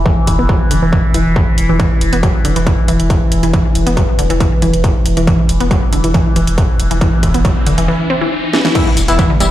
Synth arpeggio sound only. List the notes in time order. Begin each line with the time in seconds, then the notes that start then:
0.06 E3
0.39 B3
0.49 F#3
0.71 D3
0.82 E3
0.93 E3
1.14 E3
1.69 E3
1.80 E3
2.13 B3
2.23 F#3
2.45 D3
2.56 E3
2.67 E3
2.88 E3
3.43 E3
3.53 E3
3.87 B3
3.97 F#3
4.19 D3
4.30 E3
4.40 E3
4.62 E3
5.17 E3
5.27 E3
5.60 B3
5.71 F#3
5.93 D3
6.04 E3
6.14 E3
6.36 E3
6.91 E3
7.01 E3
7.34 B3
7.45 F#3
7.66 D3
7.78 E3
7.88 E3
8.10 C4
8.21 E3
8.54 E3
8.65 E3
8.75 E3
9.19 E3
9.30 D3
9.40 G3